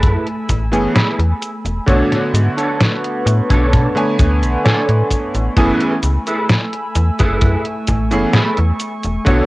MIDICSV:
0, 0, Header, 1, 7, 480
1, 0, Start_track
1, 0, Key_signature, 3, "minor"
1, 0, Tempo, 923077
1, 978, Time_signature, 4, 2, 24, 8
1, 4920, End_track
2, 0, Start_track
2, 0, Title_t, "Ambient pad"
2, 0, Program_c, 0, 92
2, 0, Note_on_c, 0, 57, 76
2, 0, Note_on_c, 0, 80, 70
2, 0, Note_on_c, 0, 83, 69
2, 0, Note_on_c, 0, 88, 84
2, 957, Note_off_c, 0, 83, 0
2, 958, Note_off_c, 0, 57, 0
2, 958, Note_off_c, 0, 80, 0
2, 958, Note_off_c, 0, 88, 0
2, 975, Note_on_c, 0, 85, 70
2, 976, Note_on_c, 0, 71, 76
2, 2877, Note_off_c, 0, 85, 0
2, 2878, Note_off_c, 0, 71, 0
2, 2895, Note_on_c, 0, 88, 86
2, 2896, Note_on_c, 0, 57, 77
2, 2897, Note_on_c, 0, 80, 69
2, 2898, Note_on_c, 0, 83, 71
2, 3849, Note_off_c, 0, 83, 0
2, 3857, Note_on_c, 0, 85, 68
2, 4797, Note_off_c, 0, 88, 0
2, 4798, Note_off_c, 0, 57, 0
2, 4799, Note_off_c, 0, 80, 0
2, 4816, Note_on_c, 0, 69, 70
2, 4817, Note_on_c, 0, 71, 80
2, 4920, Note_off_c, 0, 69, 0
2, 4920, Note_off_c, 0, 71, 0
2, 4920, Note_off_c, 0, 85, 0
2, 4920, End_track
3, 0, Start_track
3, 0, Title_t, "Clean electric guitar"
3, 0, Program_c, 1, 27
3, 0, Note_on_c, 1, 64, 87
3, 0, Note_on_c, 1, 68, 92
3, 0, Note_on_c, 1, 69, 95
3, 0, Note_on_c, 1, 71, 98
3, 136, Note_off_c, 1, 64, 0
3, 137, Note_off_c, 1, 68, 0
3, 137, Note_off_c, 1, 69, 0
3, 138, Note_off_c, 1, 71, 0
3, 493, Note_on_c, 1, 68, 76
3, 494, Note_on_c, 1, 64, 74
3, 494, Note_on_c, 1, 69, 78
3, 498, Note_on_c, 1, 71, 82
3, 618, Note_off_c, 1, 64, 0
3, 619, Note_off_c, 1, 68, 0
3, 620, Note_off_c, 1, 69, 0
3, 620, Note_off_c, 1, 71, 0
3, 972, Note_on_c, 1, 62, 109
3, 975, Note_on_c, 1, 69, 87
3, 975, Note_on_c, 1, 73, 116
3, 1157, Note_off_c, 1, 62, 0
3, 1158, Note_off_c, 1, 69, 0
3, 1158, Note_off_c, 1, 73, 0
3, 1335, Note_on_c, 1, 62, 81
3, 1338, Note_on_c, 1, 69, 69
3, 1342, Note_on_c, 1, 73, 80
3, 1455, Note_off_c, 1, 62, 0
3, 1457, Note_off_c, 1, 69, 0
3, 1458, Note_off_c, 1, 73, 0
3, 1817, Note_on_c, 1, 62, 101
3, 1819, Note_on_c, 1, 69, 96
3, 1821, Note_on_c, 1, 73, 113
3, 2059, Note_off_c, 1, 62, 0
3, 2060, Note_off_c, 1, 69, 0
3, 2061, Note_off_c, 1, 73, 0
3, 2412, Note_on_c, 1, 62, 82
3, 2417, Note_on_c, 1, 69, 65
3, 2417, Note_on_c, 1, 73, 92
3, 2539, Note_off_c, 1, 62, 0
3, 2540, Note_off_c, 1, 69, 0
3, 2541, Note_off_c, 1, 73, 0
3, 2895, Note_on_c, 1, 68, 101
3, 2897, Note_on_c, 1, 64, 99
3, 2897, Note_on_c, 1, 69, 87
3, 2899, Note_on_c, 1, 71, 117
3, 3078, Note_off_c, 1, 64, 0
3, 3079, Note_off_c, 1, 68, 0
3, 3079, Note_off_c, 1, 69, 0
3, 3080, Note_off_c, 1, 71, 0
3, 3259, Note_on_c, 1, 68, 76
3, 3261, Note_on_c, 1, 64, 72
3, 3261, Note_on_c, 1, 69, 80
3, 3264, Note_on_c, 1, 71, 78
3, 3377, Note_off_c, 1, 64, 0
3, 3377, Note_off_c, 1, 68, 0
3, 3378, Note_off_c, 1, 69, 0
3, 3379, Note_off_c, 1, 71, 0
3, 3738, Note_on_c, 1, 64, 97
3, 3738, Note_on_c, 1, 68, 98
3, 3739, Note_on_c, 1, 69, 100
3, 3742, Note_on_c, 1, 71, 100
3, 3979, Note_off_c, 1, 64, 0
3, 3980, Note_off_c, 1, 68, 0
3, 3981, Note_off_c, 1, 69, 0
3, 3981, Note_off_c, 1, 71, 0
3, 4334, Note_on_c, 1, 68, 76
3, 4338, Note_on_c, 1, 69, 76
3, 4339, Note_on_c, 1, 64, 77
3, 4339, Note_on_c, 1, 71, 95
3, 4460, Note_off_c, 1, 64, 0
3, 4460, Note_off_c, 1, 68, 0
3, 4461, Note_off_c, 1, 69, 0
3, 4462, Note_off_c, 1, 71, 0
3, 4817, Note_on_c, 1, 62, 98
3, 4820, Note_on_c, 1, 69, 88
3, 4821, Note_on_c, 1, 73, 118
3, 4920, Note_off_c, 1, 62, 0
3, 4920, Note_off_c, 1, 69, 0
3, 4920, Note_off_c, 1, 73, 0
3, 4920, End_track
4, 0, Start_track
4, 0, Title_t, "Electric grand piano"
4, 0, Program_c, 2, 2
4, 374, Note_on_c, 2, 52, 79
4, 375, Note_on_c, 2, 57, 75
4, 378, Note_on_c, 2, 59, 74
4, 381, Note_on_c, 2, 61, 75
4, 382, Note_on_c, 2, 68, 90
4, 491, Note_off_c, 2, 52, 0
4, 492, Note_off_c, 2, 57, 0
4, 493, Note_off_c, 2, 59, 0
4, 494, Note_off_c, 2, 61, 0
4, 495, Note_off_c, 2, 68, 0
4, 969, Note_on_c, 2, 50, 86
4, 972, Note_on_c, 2, 57, 78
4, 976, Note_on_c, 2, 59, 78
4, 982, Note_on_c, 2, 73, 77
4, 986, Note_on_c, 2, 66, 94
4, 2027, Note_off_c, 2, 50, 0
4, 2029, Note_off_c, 2, 57, 0
4, 2031, Note_off_c, 2, 59, 0
4, 2033, Note_off_c, 2, 73, 0
4, 2035, Note_off_c, 2, 66, 0
4, 2053, Note_on_c, 2, 50, 86
4, 2057, Note_on_c, 2, 57, 76
4, 2059, Note_on_c, 2, 59, 80
4, 2063, Note_on_c, 2, 73, 78
4, 2068, Note_on_c, 2, 80, 94
4, 2866, Note_off_c, 2, 50, 0
4, 2868, Note_off_c, 2, 57, 0
4, 2869, Note_off_c, 2, 59, 0
4, 2871, Note_off_c, 2, 73, 0
4, 2873, Note_off_c, 2, 80, 0
4, 2893, Note_on_c, 2, 52, 92
4, 2896, Note_on_c, 2, 57, 89
4, 2897, Note_on_c, 2, 59, 86
4, 2898, Note_on_c, 2, 61, 85
4, 2902, Note_on_c, 2, 80, 104
4, 3083, Note_off_c, 2, 52, 0
4, 3085, Note_off_c, 2, 57, 0
4, 3085, Note_off_c, 2, 59, 0
4, 3086, Note_off_c, 2, 61, 0
4, 3088, Note_off_c, 2, 80, 0
4, 4216, Note_on_c, 2, 52, 83
4, 4218, Note_on_c, 2, 57, 75
4, 4220, Note_on_c, 2, 59, 75
4, 4223, Note_on_c, 2, 61, 77
4, 4225, Note_on_c, 2, 68, 94
4, 4332, Note_off_c, 2, 52, 0
4, 4333, Note_off_c, 2, 57, 0
4, 4334, Note_off_c, 2, 59, 0
4, 4335, Note_off_c, 2, 61, 0
4, 4337, Note_off_c, 2, 68, 0
4, 4808, Note_on_c, 2, 50, 89
4, 4812, Note_on_c, 2, 57, 80
4, 4816, Note_on_c, 2, 59, 81
4, 4820, Note_on_c, 2, 73, 81
4, 4824, Note_on_c, 2, 66, 99
4, 4920, Note_off_c, 2, 50, 0
4, 4920, Note_off_c, 2, 57, 0
4, 4920, Note_off_c, 2, 59, 0
4, 4920, Note_off_c, 2, 66, 0
4, 4920, Note_off_c, 2, 73, 0
4, 4920, End_track
5, 0, Start_track
5, 0, Title_t, "FM bass"
5, 0, Program_c, 3, 39
5, 16, Note_on_c, 3, 42, 91
5, 94, Note_off_c, 3, 42, 0
5, 258, Note_on_c, 3, 33, 90
5, 376, Note_on_c, 3, 30, 88
5, 384, Note_off_c, 3, 33, 0
5, 452, Note_off_c, 3, 30, 0
5, 618, Note_on_c, 3, 40, 82
5, 693, Note_off_c, 3, 40, 0
5, 858, Note_on_c, 3, 28, 82
5, 933, Note_off_c, 3, 28, 0
5, 976, Note_on_c, 3, 35, 94
5, 1054, Note_off_c, 3, 35, 0
5, 1214, Note_on_c, 3, 44, 81
5, 1293, Note_off_c, 3, 44, 0
5, 1696, Note_on_c, 3, 45, 96
5, 1774, Note_off_c, 3, 45, 0
5, 1821, Note_on_c, 3, 35, 96
5, 1940, Note_on_c, 3, 47, 94
5, 1948, Note_off_c, 3, 35, 0
5, 2016, Note_off_c, 3, 47, 0
5, 2180, Note_on_c, 3, 38, 89
5, 2300, Note_on_c, 3, 35, 91
5, 2308, Note_off_c, 3, 38, 0
5, 2374, Note_off_c, 3, 35, 0
5, 2541, Note_on_c, 3, 45, 82
5, 2614, Note_off_c, 3, 45, 0
5, 2780, Note_on_c, 3, 33, 86
5, 2854, Note_off_c, 3, 33, 0
5, 2896, Note_on_c, 3, 30, 96
5, 2974, Note_off_c, 3, 30, 0
5, 3137, Note_on_c, 3, 37, 82
5, 3214, Note_off_c, 3, 37, 0
5, 3616, Note_on_c, 3, 40, 92
5, 3694, Note_off_c, 3, 40, 0
5, 3744, Note_on_c, 3, 30, 92
5, 3857, Note_on_c, 3, 42, 95
5, 3865, Note_off_c, 3, 30, 0
5, 3934, Note_off_c, 3, 42, 0
5, 4098, Note_on_c, 3, 33, 90
5, 4220, Note_on_c, 3, 30, 90
5, 4228, Note_off_c, 3, 33, 0
5, 4294, Note_off_c, 3, 30, 0
5, 4464, Note_on_c, 3, 40, 85
5, 4536, Note_off_c, 3, 40, 0
5, 4703, Note_on_c, 3, 28, 86
5, 4775, Note_off_c, 3, 28, 0
5, 4818, Note_on_c, 3, 35, 93
5, 4895, Note_off_c, 3, 35, 0
5, 4920, End_track
6, 0, Start_track
6, 0, Title_t, "Muted clean electric guitar strokes"
6, 378, Note_on_c, 9, 29, 32
6, 430, Note_off_c, 9, 29, 0
6, 734, Note_on_c, 9, 29, 31
6, 786, Note_off_c, 9, 29, 0
6, 1575, Note_on_c, 9, 29, 31
6, 1627, Note_off_c, 9, 29, 0
6, 1691, Note_on_c, 9, 29, 84
6, 1743, Note_off_c, 9, 29, 0
6, 2298, Note_on_c, 9, 29, 31
6, 2350, Note_off_c, 9, 29, 0
6, 2654, Note_on_c, 9, 29, 31
6, 2706, Note_off_c, 9, 29, 0
6, 3499, Note_on_c, 9, 29, 31
6, 3551, Note_off_c, 9, 29, 0
6, 3615, Note_on_c, 9, 29, 83
6, 3667, Note_off_c, 9, 29, 0
6, 4220, Note_on_c, 9, 29, 34
6, 4272, Note_off_c, 9, 29, 0
6, 4578, Note_on_c, 9, 29, 32
6, 4630, Note_off_c, 9, 29, 0
6, 4920, End_track
7, 0, Start_track
7, 0, Title_t, "Drums"
7, 17, Note_on_c, 9, 36, 106
7, 18, Note_on_c, 9, 42, 59
7, 18, Note_on_c, 9, 69, 26
7, 69, Note_off_c, 9, 36, 0
7, 70, Note_off_c, 9, 42, 0
7, 70, Note_off_c, 9, 69, 0
7, 141, Note_on_c, 9, 42, 36
7, 193, Note_off_c, 9, 42, 0
7, 258, Note_on_c, 9, 42, 86
7, 258, Note_on_c, 9, 69, 59
7, 259, Note_on_c, 9, 36, 54
7, 310, Note_off_c, 9, 42, 0
7, 310, Note_off_c, 9, 69, 0
7, 311, Note_off_c, 9, 36, 0
7, 381, Note_on_c, 9, 42, 36
7, 381, Note_on_c, 9, 69, 33
7, 433, Note_off_c, 9, 42, 0
7, 433, Note_off_c, 9, 69, 0
7, 498, Note_on_c, 9, 38, 110
7, 498, Note_on_c, 9, 42, 58
7, 498, Note_on_c, 9, 69, 25
7, 550, Note_off_c, 9, 38, 0
7, 550, Note_off_c, 9, 42, 0
7, 550, Note_off_c, 9, 69, 0
7, 622, Note_on_c, 9, 42, 36
7, 674, Note_off_c, 9, 42, 0
7, 740, Note_on_c, 9, 42, 83
7, 740, Note_on_c, 9, 69, 56
7, 792, Note_off_c, 9, 42, 0
7, 792, Note_off_c, 9, 69, 0
7, 861, Note_on_c, 9, 42, 35
7, 861, Note_on_c, 9, 69, 32
7, 913, Note_off_c, 9, 42, 0
7, 913, Note_off_c, 9, 69, 0
7, 977, Note_on_c, 9, 36, 107
7, 979, Note_on_c, 9, 42, 59
7, 979, Note_on_c, 9, 69, 26
7, 1029, Note_off_c, 9, 36, 0
7, 1031, Note_off_c, 9, 42, 0
7, 1031, Note_off_c, 9, 69, 0
7, 1103, Note_on_c, 9, 38, 35
7, 1103, Note_on_c, 9, 42, 36
7, 1155, Note_off_c, 9, 38, 0
7, 1155, Note_off_c, 9, 42, 0
7, 1220, Note_on_c, 9, 42, 80
7, 1220, Note_on_c, 9, 69, 59
7, 1272, Note_off_c, 9, 42, 0
7, 1272, Note_off_c, 9, 69, 0
7, 1342, Note_on_c, 9, 42, 36
7, 1342, Note_on_c, 9, 69, 33
7, 1394, Note_off_c, 9, 42, 0
7, 1394, Note_off_c, 9, 69, 0
7, 1459, Note_on_c, 9, 38, 109
7, 1459, Note_on_c, 9, 42, 59
7, 1459, Note_on_c, 9, 69, 26
7, 1511, Note_off_c, 9, 38, 0
7, 1511, Note_off_c, 9, 42, 0
7, 1511, Note_off_c, 9, 69, 0
7, 1583, Note_on_c, 9, 42, 35
7, 1635, Note_off_c, 9, 42, 0
7, 1700, Note_on_c, 9, 42, 83
7, 1700, Note_on_c, 9, 69, 61
7, 1752, Note_off_c, 9, 42, 0
7, 1752, Note_off_c, 9, 69, 0
7, 1821, Note_on_c, 9, 36, 97
7, 1823, Note_on_c, 9, 42, 34
7, 1823, Note_on_c, 9, 69, 34
7, 1873, Note_off_c, 9, 36, 0
7, 1875, Note_off_c, 9, 42, 0
7, 1875, Note_off_c, 9, 69, 0
7, 1940, Note_on_c, 9, 36, 106
7, 1941, Note_on_c, 9, 42, 61
7, 1941, Note_on_c, 9, 69, 26
7, 1992, Note_off_c, 9, 36, 0
7, 1993, Note_off_c, 9, 42, 0
7, 1993, Note_off_c, 9, 69, 0
7, 2063, Note_on_c, 9, 42, 36
7, 2115, Note_off_c, 9, 42, 0
7, 2180, Note_on_c, 9, 36, 97
7, 2180, Note_on_c, 9, 42, 84
7, 2180, Note_on_c, 9, 69, 61
7, 2232, Note_off_c, 9, 36, 0
7, 2232, Note_off_c, 9, 42, 0
7, 2232, Note_off_c, 9, 69, 0
7, 2303, Note_on_c, 9, 42, 37
7, 2303, Note_on_c, 9, 69, 36
7, 2355, Note_off_c, 9, 42, 0
7, 2355, Note_off_c, 9, 69, 0
7, 2421, Note_on_c, 9, 38, 114
7, 2421, Note_on_c, 9, 42, 59
7, 2421, Note_on_c, 9, 69, 26
7, 2473, Note_off_c, 9, 38, 0
7, 2473, Note_off_c, 9, 42, 0
7, 2473, Note_off_c, 9, 69, 0
7, 2541, Note_on_c, 9, 42, 37
7, 2593, Note_off_c, 9, 42, 0
7, 2654, Note_on_c, 9, 36, 52
7, 2657, Note_on_c, 9, 42, 81
7, 2657, Note_on_c, 9, 69, 58
7, 2706, Note_off_c, 9, 36, 0
7, 2709, Note_off_c, 9, 42, 0
7, 2709, Note_off_c, 9, 69, 0
7, 2780, Note_on_c, 9, 42, 35
7, 2780, Note_on_c, 9, 69, 36
7, 2832, Note_off_c, 9, 42, 0
7, 2832, Note_off_c, 9, 69, 0
7, 2895, Note_on_c, 9, 36, 104
7, 2897, Note_on_c, 9, 42, 61
7, 2897, Note_on_c, 9, 69, 26
7, 2947, Note_off_c, 9, 36, 0
7, 2949, Note_off_c, 9, 42, 0
7, 2949, Note_off_c, 9, 69, 0
7, 3019, Note_on_c, 9, 42, 38
7, 3071, Note_off_c, 9, 42, 0
7, 3135, Note_on_c, 9, 42, 84
7, 3135, Note_on_c, 9, 69, 61
7, 3187, Note_off_c, 9, 42, 0
7, 3187, Note_off_c, 9, 69, 0
7, 3259, Note_on_c, 9, 42, 36
7, 3259, Note_on_c, 9, 69, 37
7, 3311, Note_off_c, 9, 42, 0
7, 3311, Note_off_c, 9, 69, 0
7, 3376, Note_on_c, 9, 38, 106
7, 3376, Note_on_c, 9, 42, 64
7, 3376, Note_on_c, 9, 69, 29
7, 3428, Note_off_c, 9, 38, 0
7, 3428, Note_off_c, 9, 42, 0
7, 3428, Note_off_c, 9, 69, 0
7, 3498, Note_on_c, 9, 42, 37
7, 3550, Note_off_c, 9, 42, 0
7, 3615, Note_on_c, 9, 42, 85
7, 3615, Note_on_c, 9, 69, 65
7, 3667, Note_off_c, 9, 42, 0
7, 3667, Note_off_c, 9, 69, 0
7, 3739, Note_on_c, 9, 42, 36
7, 3739, Note_on_c, 9, 69, 37
7, 3744, Note_on_c, 9, 36, 90
7, 3791, Note_off_c, 9, 42, 0
7, 3791, Note_off_c, 9, 69, 0
7, 3796, Note_off_c, 9, 36, 0
7, 3855, Note_on_c, 9, 42, 64
7, 3855, Note_on_c, 9, 69, 28
7, 3857, Note_on_c, 9, 36, 113
7, 3907, Note_off_c, 9, 42, 0
7, 3907, Note_off_c, 9, 69, 0
7, 3909, Note_off_c, 9, 36, 0
7, 3978, Note_on_c, 9, 42, 37
7, 4030, Note_off_c, 9, 42, 0
7, 4094, Note_on_c, 9, 42, 88
7, 4094, Note_on_c, 9, 69, 63
7, 4099, Note_on_c, 9, 36, 52
7, 4146, Note_off_c, 9, 42, 0
7, 4146, Note_off_c, 9, 69, 0
7, 4151, Note_off_c, 9, 36, 0
7, 4219, Note_on_c, 9, 42, 38
7, 4219, Note_on_c, 9, 69, 38
7, 4271, Note_off_c, 9, 42, 0
7, 4271, Note_off_c, 9, 69, 0
7, 4334, Note_on_c, 9, 38, 108
7, 4334, Note_on_c, 9, 42, 63
7, 4334, Note_on_c, 9, 69, 28
7, 4386, Note_off_c, 9, 38, 0
7, 4386, Note_off_c, 9, 42, 0
7, 4386, Note_off_c, 9, 69, 0
7, 4457, Note_on_c, 9, 42, 39
7, 4509, Note_off_c, 9, 42, 0
7, 4575, Note_on_c, 9, 42, 84
7, 4575, Note_on_c, 9, 69, 62
7, 4627, Note_off_c, 9, 42, 0
7, 4627, Note_off_c, 9, 69, 0
7, 4697, Note_on_c, 9, 42, 37
7, 4697, Note_on_c, 9, 69, 36
7, 4749, Note_off_c, 9, 42, 0
7, 4749, Note_off_c, 9, 69, 0
7, 4816, Note_on_c, 9, 42, 64
7, 4816, Note_on_c, 9, 69, 27
7, 4818, Note_on_c, 9, 36, 109
7, 4868, Note_off_c, 9, 42, 0
7, 4868, Note_off_c, 9, 69, 0
7, 4870, Note_off_c, 9, 36, 0
7, 4920, End_track
0, 0, End_of_file